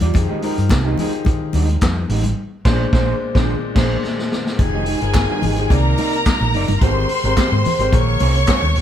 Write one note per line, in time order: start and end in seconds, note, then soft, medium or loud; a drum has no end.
0.00 0.12 E2 medium
0.00 0.17 D#3 medium
0.00 0.17 D4 medium
0.00 0.17 F4 medium
0.00 0.14 F4 soft
0.00 0.15 G4 medium
0.00 0.14 G4 medium
0.00 0.13 D5 medium
0.00 closed hi-hat soft
0.00 high conga medium
0.14 0.27 F2 loud
0.14 0.33 F3 medium
0.14 0.33 D#4 medium
0.14 0.33 G4 medium
0.14 0.34 G#4 medium
0.14 muted clean electric guitar stroke soft
0.14 kick loud
0.14 closed hi-hat medium
0.14 muted conga medium
0.29 0.41 G#3 medium
0.29 0.42 D#4 medium
0.29 0.43 G4 medium
0.42 0.79 F3 medium
0.42 0.55 G#3 medium
0.42 0.79 D#4 medium
0.42 0.56 D#4 medium
0.42 0.80 G4 medium
0.42 0.56 G4 medium
0.42 0.80 A#4 medium
0.42 open hi-hat medium
0.58 0.69 G2 medium
0.58 muted clean electric guitar stroke soft
0.58 closed hi-hat soft
0.69 0.94 C2 medium
0.69 kick loud
0.69 snare loud
0.69 clap medium
0.69 closed hi-hat medium
0.69 high conga medium
0.85 0.98 G#3 medium
0.85 0.99 D#4 medium
0.85 1.00 G4 medium
0.98 1.71 F3 medium
0.98 1.11 G#3 medium
0.98 1.72 D#4 medium
0.98 1.12 D#4 medium
0.98 1.72 G4 medium
0.98 1.13 G4 medium
0.98 1.72 G#4 medium
0.98 open hi-hat medium
0.98 muted conga soft
0.98 low conga medium
1.13 muted clean electric guitar stroke soft
1.13 closed hi-hat soft
1.25 muted clean electric guitar stroke soft
1.25 kick loud
1.25 closed hi-hat medium
1.25 muted conga medium
1.41 muted clean electric guitar stroke soft
1.53 1.76 D#2 medium
1.53 1.74 G#3 medium
1.53 1.70 D#4 medium
1.53 1.68 G4 medium
1.53 open hi-hat medium
1.53 muted conga medium
1.69 muted clean electric guitar stroke medium
1.69 closed hi-hat soft
1.81 2.05 F2 medium
1.81 kick loud
1.81 snare loud
1.81 clap loud
1.81 closed hi-hat medium
1.81 high conga medium
1.98 muted clean electric guitar stroke soft
2.09 2.32 A1 loud
2.09 2.26 G#3 medium
2.09 2.25 D#4 medium
2.09 2.24 G4 medium
2.09 open hi-hat medium
2.24 muted clean electric guitar stroke soft
2.24 closed hi-hat medium
2.24 high conga medium
2.65 2.84 A#1 medium
2.65 2.84 A#2 medium
2.65 2.84 G#3 medium
2.65 2.84 D4 medium
2.65 2.85 D4 medium
2.65 2.85 G#4 medium
2.65 2.84 C5 loud
2.65 2.85 C5 loud
2.65 kick loud
2.65 snare loud
2.65 crash medium
2.92 3.12 A#1 medium
2.92 3.11 A#2 medium
2.92 3.12 G#3 medium
2.92 3.12 D4 medium
2.92 3.13 G#4 loud
2.92 3.12 C5 loud
2.92 3.13 C5 loud
2.92 kick loud
2.92 snare medium
3.34 3.54 A#1 medium
3.34 3.53 A#2 medium
3.34 3.54 G#3 medium
3.34 3.54 D4 medium
3.34 3.55 D4 medium
3.34 3.54 G#4 medium
3.34 3.54 C5 medium
3.34 kick loud
3.34 snare loud
3.75 3.95 A#1 medium
3.75 3.95 A#2 medium
3.75 3.95 G#3 medium
3.75 3.95 D4 loud
3.75 3.95 D4 medium
3.75 3.95 G#4 medium
3.75 3.96 C5 medium
3.75 3.96 C5 loud
3.75 kick loud
3.75 snare loud
3.75 crash medium
4.04 snare soft
4.19 snare medium
4.32 snare medium
4.47 snare medium
4.59 4.94 F1 medium
4.59 4.86 F3 medium
4.59 4.86 D#4 medium
4.59 4.87 G4 medium
4.59 5.68 G#4 medium
4.59 4.87 G#4 medium
4.59 5.69 G#5 medium
4.59 muted clean electric guitar stroke soft
4.59 kick loud
4.59 closed hi-hat medium
4.59 muted conga medium
4.73 4.85 G#3 medium
4.73 4.86 D#4 medium
4.73 4.87 G4 medium
4.86 5.00 G#3 medium
4.86 5.00 D#4 medium
4.86 5.00 G4 medium
4.86 open hi-hat medium
5.01 5.25 G1 medium
5.01 5.37 F3 medium
5.01 5.37 D#4 medium
5.01 5.37 G#4 medium
5.01 5.38 A#4 medium
5.01 muted clean electric guitar stroke medium
5.01 closed hi-hat soft
5.14 muted clean electric guitar stroke soft
5.14 kick loud
5.14 snare loud
5.14 clap medium
5.14 closed hi-hat medium
5.14 high conga medium
5.30 5.42 G#3 medium
5.30 5.44 D#4 medium
5.30 5.45 G4 medium
5.42 5.66 G#1 medium
5.42 5.56 G#3 medium
5.42 5.57 D#4 medium
5.42 5.57 G4 medium
5.42 open hi-hat medium
5.42 muted conga soft
5.42 low conga medium
5.56 5.71 F3 medium
5.56 5.70 D#4 medium
5.56 5.71 G4 medium
5.56 5.71 G#4 medium
5.56 muted clean electric guitar stroke soft
5.56 closed hi-hat soft
5.70 5.93 C2 medium
5.70 6.60 C3 medium
5.70 6.60 A#3 medium
5.70 6.60 D#4 medium
5.70 6.80 A#4 medium
5.70 6.60 D5 loud
5.70 6.79 A#5 medium
5.70 muted clean electric guitar stroke soft
5.70 kick loud
5.70 closed hi-hat medium
5.70 muted conga medium
5.87 muted clean electric guitar stroke soft
5.97 6.15 D#4 medium
5.97 6.14 A#4 medium
5.97 6.13 D5 medium
5.97 open hi-hat medium
5.97 muted conga medium
6.13 muted clean electric guitar stroke soft
6.13 closed hi-hat soft
6.25 kick loud
6.25 snare loud
6.25 clap medium
6.25 closed hi-hat medium
6.25 high conga medium
6.41 6.52 A#1 medium
6.41 muted clean electric guitar stroke soft
6.53 6.66 F#1 medium
6.53 6.71 D#4 medium
6.53 6.70 A#4 medium
6.53 6.69 D5 medium
6.53 open hi-hat medium
6.68 6.79 G1 medium
6.68 muted clean electric guitar stroke soft
6.68 closed hi-hat soft
6.68 high conga medium
6.81 7.04 G#1 loud
6.81 7.08 G#3 medium
6.81 6.94 B3 medium
6.81 7.09 G4 medium
6.81 7.09 G4 loud
6.81 7.09 A#4 medium
6.81 7.09 A#4 loud
6.81 7.91 C5 medium
6.81 7.09 C5 medium
6.81 7.91 C6 medium
6.81 kick loud
6.81 closed hi-hat medium
6.81 muted conga medium
6.94 7.08 C4 medium
7.09 muted clean electric guitar stroke soft
7.09 open hi-hat medium
7.24 7.35 G#1 medium
7.24 7.60 G#3 medium
7.24 7.36 C4 soft
7.24 7.60 G4 medium
7.24 7.36 G4 medium
7.24 7.36 A#4 medium
7.24 7.60 A#4 medium
7.24 7.60 C5 medium
7.24 closed hi-hat soft
7.37 7.53 C4 medium
7.37 7.52 G4 medium
7.37 7.51 A#4 medium
7.37 kick loud
7.37 snare loud
7.37 clap medium
7.37 closed hi-hat medium
7.37 high conga medium
7.52 7.63 G#2 loud
7.52 muted clean electric guitar stroke soft
7.65 muted clean electric guitar stroke soft
7.65 open hi-hat medium
7.65 muted conga soft
7.65 low conga medium
7.79 7.90 G#1 medium
7.79 7.93 G#3 medium
7.79 7.92 C4 soft
7.79 7.93 G4 medium
7.79 7.92 G4 soft
7.79 7.91 A#4 medium
7.79 7.92 A#4 medium
7.79 7.94 C5 medium
7.79 closed hi-hat soft
7.92 8.16 A#1 loud
7.92 8.81 A#3 medium
7.92 8.81 G#4 medium
7.92 8.81 A#4 medium
7.92 8.81 C#5 medium
7.92 8.81 C#6 loud
7.92 kick loud
7.92 closed hi-hat medium
7.92 muted conga medium
8.07 muted clean electric guitar stroke soft
8.19 8.43 C2 medium
8.19 8.37 C#4 medium
8.19 8.37 G#4 medium
8.19 8.35 C5 medium
8.19 open hi-hat medium
8.19 muted conga medium
8.35 muted clean electric guitar stroke medium
8.35 closed hi-hat soft
8.47 8.64 C#4 medium
8.47 8.64 G#4 medium
8.47 8.62 C5 medium
8.47 kick loud
8.47 snare loud
8.47 clap medium
8.47 closed hi-hat medium
8.47 high conga medium
8.62 8.73 D#2 medium
8.62 muted clean electric guitar stroke soft
8.75 8.81 D#1 medium
8.75 muted clean electric guitar stroke soft
8.75 open hi-hat medium